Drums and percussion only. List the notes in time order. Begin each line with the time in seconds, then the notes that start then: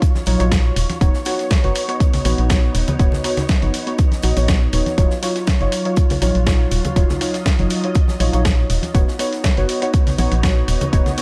0.02 kick, closed hi-hat
0.15 snare, high conga
0.26 closed hi-hat, open hi-hat
0.40 closed hi-hat
0.52 kick, snare, closed hi-hat
0.76 closed hi-hat, open hi-hat
0.90 snare, closed hi-hat, high conga
1.01 kick, closed hi-hat
1.14 snare
1.25 snare, closed hi-hat, open hi-hat
1.39 snare, closed hi-hat
1.50 kick, snare, closed hi-hat
1.64 closed hi-hat
1.75 closed hi-hat, open hi-hat
1.89 closed hi-hat
2.00 kick, closed hi-hat
2.13 snare, open hi-hat, low conga
2.25 closed hi-hat, open hi-hat, high conga
2.38 closed hi-hat
2.50 kick, snare, closed hi-hat
2.75 closed hi-hat, open hi-hat
2.88 closed hi-hat, high conga, low conga
2.99 kick, closed hi-hat
3.12 snare, low conga
3.24 snare, closed hi-hat, open hi-hat
3.37 snare, closed hi-hat, low conga
3.49 kick, snare, closed hi-hat
3.62 closed hi-hat, high conga
3.74 closed hi-hat, open hi-hat
3.87 closed hi-hat
3.98 kick, closed hi-hat
4.11 snare, closed hi-hat, high conga
4.22 closed hi-hat, open hi-hat
4.37 closed hi-hat, open hi-hat
4.48 kick, snare, closed hi-hat
4.73 closed hi-hat, open hi-hat
4.86 snare, closed hi-hat, high conga
4.98 kick, closed hi-hat
5.11 snare
5.23 snare, closed hi-hat, open hi-hat
5.35 snare, closed hi-hat
5.47 kick, snare, closed hi-hat
5.61 closed hi-hat
5.72 closed hi-hat, open hi-hat
5.85 closed hi-hat
5.96 kick, closed hi-hat
6.10 snare, open hi-hat, low conga
6.22 closed hi-hat, open hi-hat, high conga
6.35 closed hi-hat
6.46 kick, snare, closed hi-hat
6.71 closed hi-hat, open hi-hat
6.85 closed hi-hat, high conga, low conga
6.96 kick, closed hi-hat
7.09 snare, low conga
7.21 snare, closed hi-hat, open hi-hat
7.34 snare, closed hi-hat
7.46 kick, snare, closed hi-hat
7.59 closed hi-hat, high conga
7.70 closed hi-hat, open hi-hat
7.84 closed hi-hat
7.95 kick, closed hi-hat
8.08 snare, high conga
8.20 closed hi-hat, open hi-hat
8.33 closed hi-hat
8.45 kick, snare, closed hi-hat
8.70 closed hi-hat, open hi-hat
8.82 snare, closed hi-hat, high conga
8.95 kick, closed hi-hat
9.08 snare
9.19 snare, closed hi-hat, open hi-hat
9.33 snare, closed hi-hat
9.44 kick, snare, closed hi-hat
9.57 closed hi-hat
9.69 closed hi-hat, open hi-hat
9.82 closed hi-hat
9.93 kick, closed hi-hat
10.07 snare, open hi-hat, low conga
10.18 closed hi-hat, open hi-hat, high conga
10.32 closed hi-hat
10.43 kick, snare, closed hi-hat
10.68 closed hi-hat, open hi-hat
10.81 closed hi-hat, high conga, low conga
10.93 kick, closed hi-hat
11.06 snare, closed hi-hat, low conga
11.18 snare, closed hi-hat, open hi-hat